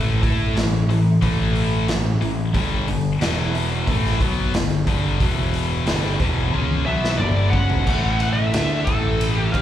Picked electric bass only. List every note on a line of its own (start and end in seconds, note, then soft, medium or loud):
0.00 0.19 A1 medium
0.23 0.54 A2 medium
0.55 0.86 A1 medium
0.89 1.20 A1 medium
1.22 1.84 A1 medium
1.88 2.19 A1 medium
2.23 2.53 A1 medium
2.54 2.85 G1 medium
2.88 3.19 G1 medium
3.20 3.83 E1 medium
3.87 4.18 A1 medium
4.20 4.51 B1 medium
4.53 4.85 G1 medium
4.87 5.18 G1 medium
5.20 5.83 E1 medium
5.86 6.18 G1 medium
6.20 6.51 E1 medium
6.52 6.84 C#2 medium
6.87 7.18 B1 medium
7.19 7.51 G1 medium
7.52 7.84 C#2 medium
7.86 8.49 A1 medium
8.53 8.85 D2 medium
8.86 9.50 A1 medium
9.53 9.62 G2 medium